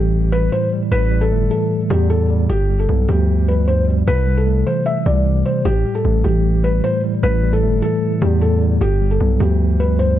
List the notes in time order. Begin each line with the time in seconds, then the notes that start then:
Already playing: A1 A2 E3 G3 A3 G4
0.32 G3 B4
0.52 A2 C5
0.73 G3
0.92 A1 A2 B4
1.11 G3
1.21 A4
1.31 G1 A3
1.50 E3 A4
1.90 E2 G3 G4
2.10 A2 A4
2.30 G3
2.50 G1 G2 G4
2.70 G3
2.79 A4
2.89 B1 B3
3.08 D2 F3 G4
3.48 G3 B4
3.68 G2 C5
3.88 G3
4.07 C2 C3 B4
4.27 G3
4.37 A4
4.46 A3
4.66 E3 C5
4.86 E5
5.06 C2 G3 D5
5.25 C3
5.45 G3 C5
5.65 A1 A2 G4
5.85 G3
5.95 A4
6.05 A1 A3
6.24 A1 E3 G4
6.63 G3 B4
6.84 A2 C5
7.04 G3
7.23 A1 A2 B4
7.43 G3
7.53 A4
7.63 G1 A3
7.82 E3 A4
8.22 E2 G3 G4
8.41 A2 A4
8.62 G3
8.81 G1 G2 G4
9.01 G3
9.11 A4
9.20 B1 B3
9.40 D2 F3 G4
9.80 G3 B4
9.99 G2 C5